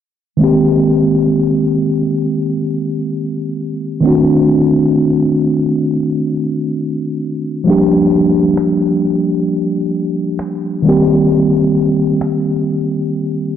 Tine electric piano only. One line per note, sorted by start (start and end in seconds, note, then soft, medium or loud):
0.37 3.98 D#3 medium
0.37 3.99 G#3 medium
0.37 3.99 A#3 medium
0.42 4.00 C4 medium
0.42 4.01 G4 medium
4.01 7.61 D#3 medium
4.01 7.62 A3 medium
4.01 7.63 C4 medium
4.05 7.64 D4 medium
4.05 7.65 F#4 medium
7.64 10.80 F3 medium
7.64 10.80 G3 medium
7.64 10.81 A#3 medium
7.69 10.82 D4 medium
7.69 10.83 G4 medium
10.82 13.57 D#3 medium
10.82 13.57 G3 medium
10.82 13.57 A#3 medium
10.87 13.57 C4 medium
10.87 13.57 G4 medium